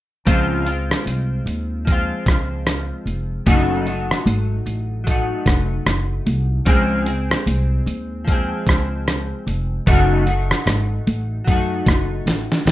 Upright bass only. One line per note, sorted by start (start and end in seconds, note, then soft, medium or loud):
0.27 0.91 C#2 medium
1.06 1.38 C2 medium
1.46 2.10 D#2 medium
2.26 2.90 C#2 medium
3.06 3.38 F1 medium
3.46 4.11 F#1 medium
4.26 4.58 G#1 medium
4.66 5.30 A1 medium
5.46 5.78 F1 medium
5.86 6.18 F#1 medium
6.26 6.58 C2 medium
6.67 7.31 C#2 medium
7.46 7.79 C2 medium
7.86 8.50 D#2 medium
8.67 9.31 C#2 medium
9.47 9.79 F1 medium
9.87 10.51 F#1 medium
10.66 10.98 G#1 medium
11.07 11.39 A1 medium
11.47 11.79 F#2 medium
11.86 12.19 F#1 medium
12.26 12.45 A1 medium
12.66 12.71 C2 medium